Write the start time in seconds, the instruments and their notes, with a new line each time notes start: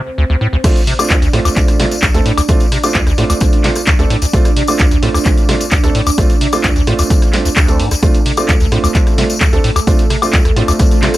Already playing: grand piano A3 C4 D4 F4, ambient pad C4 C5
0.18 acid bass D2
0.30 acid bass D2
0.41 acid bass A2
0.53 acid bass D2
0.64 acid bass D2, grand piano A3 C4 D4 F4, ambient pad D4 D5, kick, cross-stick, closed hi-hat, tambourine, crash
0.76 closed hi-hat, tambourine
0.87 acid bass C3, open hi-hat
0.99 grand piano A3 C4 D4 F4, cross-stick, closed hi-hat, tambourine, high woodblock
1.10 acid bass D2, kick, clap, closed hi-hat
1.22 acid bass D2, closed hi-hat, tambourine
1.33 acid bass A2, grand piano A3 C4 D4 F4, cross-stick, open hi-hat
1.45 acid bass D2, closed hi-hat, tambourine, high woodblock
1.56 acid bass D2, kick, clap, closed hi-hat, tambourine
1.68 cross-stick, closed hi-hat, tambourine
1.80 acid bass C3, grand piano A3 C4 D4 F4, snare, open hi-hat
1.91 closed hi-hat, tambourine
2.03 acid bass D2, kick, cross-stick, clap, closed hi-hat, tambourine
2.14 acid bass D2, grand piano A3 C4 D4 A4, closed hi-hat, tambourine
2.26 acid bass A2, open hi-hat
2.38 acid bass D2, cross-stick, closed hi-hat, tambourine, high woodblock
2.48 acid bass D2, grand piano A3 C4 D4 F4, kick, closed hi-hat, tambourine
2.60 closed hi-hat, tambourine
2.72 acid bass C3, cross-stick, open hi-hat
2.83 grand piano A3 C4 D4 F4, closed hi-hat, tambourine, high woodblock
2.95 acid bass D2, kick, clap, closed hi-hat, tambourine
3.07 acid bass D2, cross-stick, closed hi-hat, tambourine
3.18 acid bass A2, grand piano A3 C4 D4 F4, open hi-hat
3.30 acid bass D2, closed hi-hat, tambourine, high woodblock
3.40 acid bass D2, kick, cross-stick, closed hi-hat, tambourine
3.53 closed hi-hat, tambourine
3.64 acid bass C3, grand piano A3 C4 D4 F4, snare, clap, open hi-hat
3.75 cross-stick, closed hi-hat, tambourine
3.87 acid bass D2, kick, clap, closed hi-hat, tambourine
3.99 acid bass D2, grand piano A3 C4 D4 A4, closed hi-hat, tambourine
4.10 acid bass A2, cross-stick, open hi-hat
4.22 acid bass D2, closed hi-hat, tambourine
4.33 acid bass D2, grand piano A3 C4 D4 F4, kick, closed hi-hat, tambourine
4.45 cross-stick, closed hi-hat, tambourine
4.56 acid bass C3, open hi-hat
4.67 grand piano A3 C4 D4 F4, closed hi-hat, tambourine, high woodblock
4.79 acid bass D2, kick, cross-stick, clap, closed hi-hat, tambourine
4.91 acid bass D2, closed hi-hat, tambourine
5.03 acid bass A2, grand piano A3 C4 D4 F4, open hi-hat
5.14 acid bass D2, cross-stick, closed hi-hat, tambourine, high woodblock
5.26 acid bass D2, kick, clap, closed hi-hat, tambourine
5.38 closed hi-hat, tambourine
5.49 acid bass C3, grand piano A3 C4 D4 F4, cross-stick, snare, open hi-hat
5.61 closed hi-hat, tambourine
5.71 acid bass D2, kick, clap, closed hi-hat, tambourine
5.84 acid bass D2, grand piano A3 C4 D4 A4, cross-stick, closed hi-hat, tambourine
5.95 acid bass A2, open hi-hat
6.07 acid bass D2, closed hi-hat, tambourine, high woodblock
6.18 acid bass D2, grand piano A3 C4 D4 F4, kick, cross-stick, closed hi-hat, tambourine
6.30 closed hi-hat, tambourine
6.41 acid bass C3, open hi-hat
6.53 grand piano A3 C4 D4 F4, cross-stick, closed hi-hat, tambourine, high woodblock
6.64 acid bass D2, kick, clap, closed hi-hat, tambourine
6.76 acid bass D2, closed hi-hat, tambourine
6.87 acid bass A2, grand piano A3 C4 D4 F4, cross-stick, open hi-hat
6.99 acid bass D2, closed hi-hat, tambourine, high woodblock
7.10 acid bass D2, kick, closed hi-hat, tambourine
7.22 cross-stick, closed hi-hat, tambourine
7.33 grand piano A3 C4 D4 F4, snare, clap, open hi-hat
7.45 acid bass D2, closed hi-hat, tambourine
7.56 acid bass D2, kick, cross-stick, clap, closed hi-hat, tambourine
7.68 grand piano A3 C4 D4 A4, closed hi-hat, tambourine
7.80 acid bass A2, open hi-hat
7.91 acid bass D2, cross-stick, closed hi-hat, tambourine
8.03 acid bass D2, grand piano A3 C4 D4 F4, ambient pad A3 A4, kick, cross-stick, closed hi-hat, tambourine
8.14 closed hi-hat, tambourine
8.26 acid bass C3, open hi-hat
8.37 grand piano A3 C4 D4 F4, cross-stick, closed hi-hat, tambourine, high woodblock
8.49 acid bass D2, kick, clap, closed hi-hat, tambourine
8.60 acid bass D2, closed hi-hat, tambourine
8.72 acid bass A2, grand piano A3 C4 D4 F4, cross-stick, open hi-hat
8.84 acid bass D2, closed hi-hat, tambourine, high woodblock
8.95 acid bass D2, kick, clap, closed hi-hat, tambourine
9.07 cross-stick, closed hi-hat, tambourine
9.18 acid bass C3, grand piano A3 C4 D4 F4, snare, open hi-hat
9.30 closed hi-hat, tambourine
9.41 acid bass D2, kick, cross-stick, clap, closed hi-hat, tambourine
9.53 acid bass D2, grand piano A3 C4 D4 A4, closed hi-hat, tambourine
9.64 acid bass A2, open hi-hat
9.76 acid bass D2, cross-stick, closed hi-hat, tambourine, high woodblock
9.87 acid bass D2, grand piano A3 C4 D4 F4, kick, closed hi-hat, tambourine
9.99 closed hi-hat, tambourine
10.10 acid bass C3, cross-stick, open hi-hat
10.22 grand piano A3 C4 D4 F4, closed hi-hat, tambourine, high woodblock
10.33 acid bass D2, kick, clap, closed hi-hat, tambourine
10.45 acid bass D2, cross-stick, closed hi-hat, tambourine
10.56 acid bass A2, grand piano A3 C4 D4 F4, open hi-hat
10.68 acid bass D2, closed hi-hat, tambourine, high woodblock
10.79 acid bass D2, kick, cross-stick, closed hi-hat, tambourine
10.91 closed hi-hat, tambourine
11.02 acid bass C3, grand piano A3 C4 D4 F4, snare, clap, open hi-hat
11.14 tambourine